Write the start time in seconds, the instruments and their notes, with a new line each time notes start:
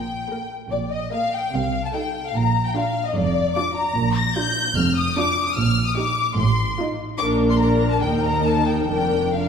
Already playing: double bass section A#1, cello section A#2, violin section G5
0.30 viola section A#3 A#4
0.71 double bass section A#1, cello section A#2, violin section D5
0.91 violin section D#5
1.13 viola section A#3 A#4, violin section F5
1.33 violin section G5
1.53 double bass section C2, cello section C3, violin section F5
1.84 violin section A5
1.93 viola section D#4 A4, violin section G5
2.25 violin section F5
2.35 double bass section A#1, cello section A#2, violin section A#5
2.65 violin section G5
2.75 viola section D4 F4, violin section F5
3.06 violin section D#5
3.15 double bass section F1, cello section F2, violin section D5
3.56 viola section D4 F4, violin section D6
3.75 violin section A#5
3.96 double bass section A#1, cello section A#2
4.16 violin section A#6
4.37 viola section D4 F4, violin section G6
4.76 double bass section F1, cello section F2, violin section F6
4.96 violin section D#6
5.16 viola section D4 F4, violin section D6
5.46 violin section D#6
5.55 double bass section A#1, cello section A#2, violin section F6
5.86 violin section D#6
5.96 viola section D#4 G4, violin section D6
6.36 double bass section A1, cello section A2, violin section C6
6.79 viola section D#4 F4
7.18 double bass section A#1, cello section A#2, viola section D4 A#4, violin section D6
7.50 violin section C6
7.59 viola section D4 A#4, violin section A#5
7.91 violin section A5
8.01 cello section D#2, double bass section D#2, viola section D#4 A#4, violin section G5
8.23 violin section A#5
8.44 violin section A5
8.66 violin section G5
8.89 double bass section F1, cello section F2, viola section D4 A#4, violin section G5
9.35 viola section D4 A#4, violin section F5